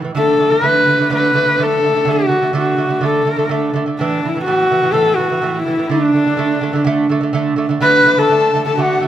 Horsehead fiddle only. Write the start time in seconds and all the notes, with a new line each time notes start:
0.17 A4
0.50 B4
1.15 B4
1.63 A4
2.11 F#4
2.58 F#4
3.05 A4
3.99 D4
4.28 E4
4.44 F#4
4.92 A4
5.15 F#4
5.63 E4
5.87 D4
7.82 B4
8.19 A4
8.67 A4
8.79 F#4